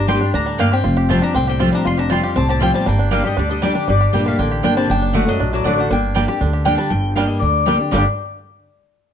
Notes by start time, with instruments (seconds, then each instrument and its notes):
Already playing: upright bass G1, steel-string acoustic guitar G2, five-string banjo D4 G4
0.07 steel-string acoustic guitar G3 A#3 D4 G4, five-string banjo G3, mandolin A#3 G4 D5 G5 C6, resonator guitar played with a steel bar G4
0.21 five-string banjo D4, steel-string acoustic guitar D4 G4
0.34 upright bass D2, steel-string acoustic guitar A2, resonator guitar played with a steel bar D4, five-string banjo D4, mandolin A#5
0.46 five-string banjo G3
0.58 steel-string acoustic guitar G2, mandolin A#3 G4 D5 F5 G5, resonator guitar played with a steel bar A#3, five-string banjo D4
0.72 resonator guitar played with a steel bar C4, five-string banjo G4, mandolin G5
0.84 upright bass F1, steel-string acoustic guitar F2, five-string banjo F4
0.97 five-string banjo G4
1.09 steel-string acoustic guitar F3 G3 C4 G4, five-string banjo G3, mandolin A3 F4 C5 G5 A5, resonator guitar played with a steel bar C4
1.22 resonator guitar played with a steel bar D4, five-string banjo G4, mandolin A#5
1.35 upright bass C2, steel-string acoustic guitar A2, five-string banjo C4, resonator guitar played with a steel bar C4, mandolin G5
1.47 resonator guitar played with a steel bar C4, five-string banjo G4, mandolin G5
1.59 steel-string acoustic guitar F3 G3 C4 G4, mandolin A3 F4 C5 G5, five-string banjo F4
1.73 five-string banjo G3, resonator guitar played with a steel bar D4, mandolin A#5
1.85 upright bass F1, steel-string acoustic guitar F2, five-string banjo F4, resonator guitar played with a steel bar F4, mandolin C6
1.98 resonator guitar played with a steel bar D4, five-string banjo G4, mandolin A#5
2.09 steel-string acoustic guitar F3 G3 C4 G4, five-string banjo G3, mandolin A3 F4 C5 G5 C6, resonator guitar played with a steel bar F4
2.24 five-string banjo G4
2.36 upright bass C2, steel-string acoustic guitar A2, five-string banjo C4, resonator guitar played with a steel bar C4, mandolin A5
2.49 resonator guitar played with a steel bar C4, five-string banjo G4, mandolin A5
2.60 steel-string acoustic guitar F3 G3 C4 G4, mandolin A3 F4 C5 G5, resonator guitar played with a steel bar C4, five-string banjo F4
2.74 five-string banjo G3, resonator guitar played with a steel bar C4, mandolin A5
2.86 upright bass G1, steel-string acoustic guitar G2, five-string banjo G3, resonator guitar played with a steel bar A#3, mandolin G5
2.99 five-string banjo D4
3.10 steel-string acoustic guitar G3 A#3 D4 G4, five-string banjo G3, mandolin A#3 G4 D5 F5 G5, resonator guitar played with a steel bar A#3
3.23 resonator guitar played with a steel bar G3, steel-string acoustic guitar D4 G4, five-string banjo G4, mandolin D#5
3.37 upright bass D2, steel-string acoustic guitar D3, resonator guitar played with a steel bar G3, five-string banjo D4, mandolin D5
3.50 resonator guitar played with a steel bar G3, five-string banjo D4, mandolin D#5
3.62 five-string banjo G3, steel-string acoustic guitar G3 A#3 D4 G4, resonator guitar played with a steel bar G3, mandolin A#3 G4 D5 G5
3.75 five-string banjo D4, steel-string acoustic guitar D4 G4
3.88 upright bass G1, steel-string acoustic guitar G2, resonator guitar played with a steel bar G3, five-string banjo D4, mandolin D5
4.01 five-string banjo G4
4.13 upright bass A#1, steel-string acoustic guitar G3 A#3 D4 G4, five-string banjo G3, mandolin A#3 G4 D5 G5
4.26 resonator guitar played with a steel bar A3, five-string banjo G4, mandolin F5
4.39 upright bass A1, steel-string acoustic guitar D3, resonator guitar played with a steel bar A#3, five-string banjo D4, mandolin G5
4.51 five-string banjo G4
4.63 upright bass G1, steel-string acoustic guitar G3 A#3 D4 G4, mandolin A#3 G4 D5 G5, resonator guitar played with a steel bar A#3, five-string banjo D4
4.77 five-string banjo G3, resonator guitar played with a steel bar C4, mandolin A5
4.89 upright bass F#1, steel-string acoustic guitar F#2, five-string banjo D4, resonator guitar played with a steel bar D4, mandolin G5
5.02 five-string banjo D4
5.13 steel-string acoustic guitar D3 A3 D4 F#4, mandolin A3 F#4 D5 F#5, five-string banjo A3, resonator guitar played with a steel bar A3
5.27 resonator guitar played with a steel bar F#3, five-string banjo D4, steel-string acoustic guitar D4 F#4, mandolin D#5
5.39 upright bass A#1, steel-string acoustic guitar A2, five-string banjo D4
5.53 resonator guitar played with a steel bar F#3, five-string banjo A3, mandolin D5
5.64 upright bass A1, steel-string acoustic guitar D3 A3 D4 F#4, resonator guitar played with a steel bar F#3, mandolin A3 F#4 D5 F#5, five-string banjo D4
5.78 resonator guitar played with a steel bar A3, five-string banjo D4, mandolin F#5
5.90 upright bass G1, steel-string acoustic guitar G2, resonator guitar played with a steel bar A#3, five-string banjo D4, mandolin G5
6.14 five-string banjo G3, steel-string acoustic guitar G3 A#3 D4 G4, mandolin A#3 G4 D5 G5
6.28 steel-string acoustic guitar D4 G4, five-string banjo G4
6.41 upright bass D2, steel-string acoustic guitar D3, five-string banjo D4
6.53 five-string banjo G4
6.65 steel-string acoustic guitar G3 A#3 D4 G4, mandolin A#3 G4 D5 G5, five-string banjo D4
6.75 five-string banjo G3, steel-string acoustic guitar G4, mandolin G5 A5
6.80 steel-string acoustic guitar D4
6.90 upright bass G1, steel-string acoustic guitar G2, mandolin G5
7.16 steel-string acoustic guitar G3 A#3 D4 G4, five-string banjo G3 D4, mandolin A#3 G4 D5 F5 G5
7.26 mandolin D#5
7.39 upright bass D2, steel-string acoustic guitar D3, mandolin D5
7.66 steel-string acoustic guitar G3 A#3 D4 G4, five-string banjo G3 D4, mandolin A#3 G4 D5 G5
7.79 steel-string acoustic guitar D4 G4
7.91 upright bass G1, steel-string acoustic guitar G2 D3 G3 A#3 D4 G4, five-string banjo G3 A#3, mandolin A#3 G4 D5 G5
7.96 five-string banjo D4 G4